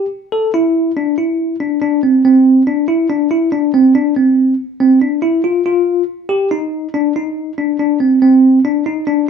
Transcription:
tine electric piano
0.32 A4
0.54 E4
0.97 D4
1.18 E4
1.60 D4
1.82 D4
2.03 C4
2.25 C4
2.67 D4
2.88 E4
3.10 D4
3.31 E4
3.52 D4
3.74 C4
3.95 D4
4.16 C4
4.80 C4
5.01 D4
5.22 E4
5.44 F4
5.66 F4
6.29 G4
6.51 D#4
6.94 D4
7.16 D#4
7.58 D4
7.79 D4
8.00 C4
8.22 C4
8.65 D4
8.86 D#4
9.07 D4

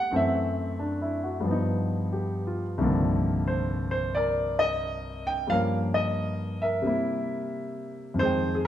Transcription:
grand piano
Already playing: A2 G3 A3 B3 C4 F#5
0.11 F#2 E3 A3 C4
0.16 E5
0.79 D4
1.02 E4
1.24 F#4
1.40 G2 F3
1.47 B3 D#4
2.13 G4
2.47 F4
2.78 C2 G2 D#3 F3 A#3
2.83 D3
3.48 C5
3.91 C5
4.15 A#4 D5
4.59 D#5
5.27 G5
5.47 G2 F3 A#3 F5
5.52 C#4 A#4
5.94 D#5
6.62 A#4 E5
6.82 C3 G3 A#3
6.87 E4
8.14 F2 D#3
8.19 G#3 G#4 C5
8.25 G5
8.55 G#4

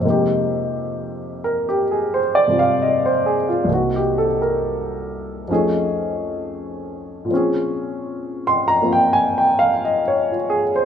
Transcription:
grand piano
0.00 F2 C3 G#3
0.05 A#3 D#4
0.10 G4
1.44 A#4
1.69 G4
1.91 G#4
2.14 C5
2.35 D5
2.48 C3 G3 C4 F4
2.59 F5
2.82 D#5
3.06 C5
3.26 G#4
3.49 F4
3.64 C2 C3
3.70 A#3 D#4 F#4
3.96 G4
4.18 A4
4.42 A#4
5.48 F2 F3 A3 C#4 D#4
5.53 G#4
7.25 A#2 F3
7.31 C4 C#4
7.36 G#4
8.47 C6
8.68 A#5
8.81 F3 A#3 C4 F4
8.93 G5
9.13 G#5
9.38 G5
9.59 F5
9.85 D#5
10.08 C#5
10.31 F4
10.50 G#4
10.76 C5

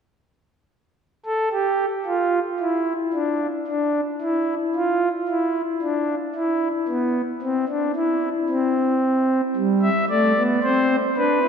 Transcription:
pipe organ
1.25 A4
1.52 G4
2.06 F4
2.60 E4
3.14 D4
3.67 D4
4.21 E4
4.75 F4
5.28 E4
5.82 D4
6.35 E4
6.88 B3
7.42 C4
7.69 D4
7.95 E4
8.49 C4
9.56 G3
9.82 E5
10.10 A3 D5
10.37 B3
10.63 C4 C5
11.17 D4 B4
11.43 E4

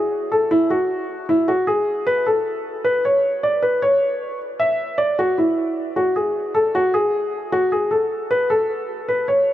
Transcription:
grand piano
Already playing: G#4
0.32 A4
0.51 E4
0.70 F#4
1.29 E4
1.48 F#4
1.67 G#4
2.07 B4
2.26 A4
2.85 B4
3.05 C#5
3.43 D5
3.62 B4
3.82 C#5
4.60 E5
4.98 D5
5.19 F#4
5.38 E4
5.96 F#4
6.16 G#4
6.55 A4
6.75 F#4
6.94 G#4
7.52 F#4
7.72 G#4
7.91 A4
8.31 B4
8.50 A4
9.08 B4
9.28 C#5

